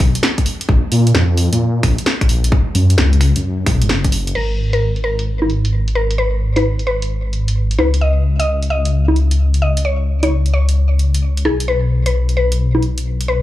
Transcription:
0.00 detuned saw bass B1, finger snap, kick, open hi-hat
0.15 closed hi-hat
0.23 snare
0.38 kick, closed hi-hat
0.46 open hi-hat
0.61 closed hi-hat
0.69 detuned saw bass A#1, kick
0.92 detuned saw bass A#2, open hi-hat
1.07 closed hi-hat
1.15 detuned saw bass F2, snare
1.37 open hi-hat
1.52 detuned saw bass A#2, closed hi-hat
1.83 detuned saw bass A#1, finger snap, kick, open hi-hat
1.98 closed hi-hat
2.06 snare
2.21 detuned saw bass A#1, finger snap, kick, closed hi-hat
2.29 open hi-hat
2.44 closed hi-hat
2.52 kick
2.75 detuned saw bass F#2, open hi-hat
2.90 closed hi-hat
2.98 detuned saw bass C#2, snare
3.13 closed hi-hat
3.21 finger snap, open hi-hat
3.36 detuned saw bass F#2, closed hi-hat
3.66 detuned saw bass B1, finger snap, kick, open hi-hat
3.82 detuned saw bass F#1, closed hi-hat
3.89 snare
4.04 kick, closed hi-hat
4.12 open hi-hat
4.27 closed hi-hat
4.35 detuned saw bass G#1, synth pluck A#4, crash
4.73 synth pluck A#4, closed hi-hat
4.96 closed hi-hat
5.04 synth pluck A#4
5.19 closed hi-hat
5.42 high conga
5.50 closed hi-hat
5.65 closed hi-hat
5.88 closed hi-hat
5.95 synth pluck A#4
6.11 closed hi-hat
6.18 synth pluck B4
6.56 synth pluck B4, closed hi-hat, high conga
6.79 closed hi-hat
6.87 synth pluck B4
7.02 closed hi-hat
7.33 closed hi-hat
7.48 closed hi-hat
7.71 closed hi-hat
7.79 detuned saw bass C#2, synth pluck B4, high conga
7.94 closed hi-hat
8.01 synth pluck D#5
8.40 synth pluck D#5, closed hi-hat
8.62 closed hi-hat
8.70 synth pluck D#5
8.85 closed hi-hat
9.08 high conga
9.16 closed hi-hat
9.31 closed hi-hat
9.54 closed hi-hat
9.62 synth pluck D#5
9.77 closed hi-hat
9.85 synth pluck C#5
10.23 synth pluck C#5, closed hi-hat, high conga
10.46 closed hi-hat
10.54 synth pluck C#5
10.69 closed hi-hat
10.99 closed hi-hat
11.14 closed hi-hat
11.37 closed hi-hat
11.45 detuned saw bass B1, synth pluck G#4, high conga
11.60 closed hi-hat
11.68 synth pluck B4
12.06 synth pluck B4, closed hi-hat
12.29 closed hi-hat
12.37 synth pluck B4
12.52 closed hi-hat
12.75 high conga
12.83 closed hi-hat
12.98 closed hi-hat
13.21 closed hi-hat
13.28 synth pluck B4

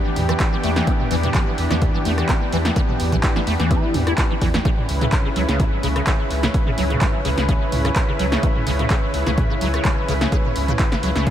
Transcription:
Already playing: analog synth pad E3 B3 D4 G4
0.16 sub bass E2, mid tom, open hi-hat
0.29 acid bass E3, cross-stick, closed hi-hat
0.40 kick, clap, closed hi-hat
0.53 acid bass E3
0.64 sub bass E2, acid bass A3, open hi-hat
0.76 acid bass E3, snare, closed hi-hat
0.87 acid bass E4, kick, closed hi-hat
1.00 mid tom
1.11 sub bass E2, acid bass E3, open hi-hat
1.23 acid bass E3, closed hi-hat, mid tom
1.34 acid bass E3, kick, clap, closed hi-hat
1.58 sub bass E2, open hi-hat
1.71 sub bass E2, acid bass E3, snare, closed hi-hat
1.82 kick, closed hi-hat, mid tom
1.94 acid bass E3
2.05 sub bass E2, acid bass A3, open hi-hat
2.18 acid bass E3, cross-stick, closed hi-hat
2.29 acid bass E4, kick, clap, closed hi-hat
2.52 sub bass E2, acid bass E3, open hi-hat
2.65 acid bass E3, snare, closed hi-hat
2.76 acid bass E3, kick, closed hi-hat
2.89 mid tom
3.00 sub bass E2, open hi-hat
3.12 acid bass E3, kick, closed hi-hat, mid tom
3.23 kick, clap, closed hi-hat
3.36 acid bass E3, snare
3.47 sub bass E2, acid bass A3, open hi-hat
3.60 sub bass E2, acid bass E3, snare, closed hi-hat
3.71 acid bass E4, kick, closed hi-hat
3.94 sub bass E2, acid bass B3, mid tom, open hi-hat
4.07 acid bass E4, cross-stick, closed hi-hat
4.18 acid bass E4, kick, clap, closed hi-hat
4.30 acid bass E3
4.41 sub bass E2, acid bass E3, kick, open hi-hat
4.54 acid bass E3, snare, closed hi-hat
4.65 analog synth pad C#3 C#4 E4 B4, acid bass C#3, kick, closed hi-hat
4.78 mid tom
4.89 sub bass C#2, open hi-hat
5.01 acid bass C#3, closed hi-hat, mid tom
5.12 kick, clap, closed hi-hat
5.25 acid bass C#3
5.36 sub bass C#2, acid bass F#3, open hi-hat
5.49 sub bass C#2, acid bass C#3, snare, closed hi-hat
5.60 acid bass C#4, kick, closed hi-hat, mid tom
5.83 sub bass C#2, acid bass C#3, open hi-hat
5.96 acid bass C#3, cross-stick, closed hi-hat
6.07 acid bass C#3, kick, clap, closed hi-hat
6.30 sub bass C#2, open hi-hat
6.43 acid bass C#3, snare, closed hi-hat
6.54 kick, closed hi-hat
6.67 acid bass C#3, mid tom
6.78 sub bass C#2, acid bass F#3, open hi-hat
6.90 acid bass C#3, closed hi-hat, mid tom
7.01 acid bass C#4, kick, clap, closed hi-hat
7.25 sub bass C#2, acid bass C#3, open hi-hat
7.37 sub bass C#2, acid bass C#3, snare, closed hi-hat
7.48 acid bass C#3, kick, closed hi-hat
7.72 sub bass C#2, mid tom, open hi-hat
7.85 acid bass C#3, cross-stick, closed hi-hat
7.96 kick, clap, closed hi-hat
8.08 acid bass C#3
8.19 sub bass C#2, acid bass F#3, open hi-hat
8.32 acid bass C#3, snare, closed hi-hat
8.43 acid bass C#4, kick, closed hi-hat
8.56 mid tom
8.67 sub bass C#2, acid bass C#3, open hi-hat
8.79 acid bass C#3, closed hi-hat, mid tom
8.90 acid bass C#3, kick, clap, closed hi-hat
9.14 sub bass C#2, open hi-hat
9.26 sub bass C#2, acid bass C#3, snare, closed hi-hat
9.38 kick, closed hi-hat, mid tom
9.50 acid bass C#3
9.61 sub bass C#2, acid bass F#3, open hi-hat
9.74 acid bass C#3, cross-stick, closed hi-hat
9.85 acid bass C#4, kick, clap, closed hi-hat
10.08 sub bass C#2, acid bass C#3, open hi-hat
10.21 acid bass C#3, snare, closed hi-hat
10.32 acid bass C#3, kick, closed hi-hat
10.45 mid tom
10.56 sub bass C#2, open hi-hat
10.68 acid bass C#3, closed hi-hat, mid tom
10.79 kick, clap, closed hi-hat
10.92 acid bass C#3, snare
11.03 sub bass C#2, acid bass F#3, open hi-hat
11.16 sub bass C#2, acid bass C#3, snare, closed hi-hat
11.27 acid bass C#4, kick, closed hi-hat

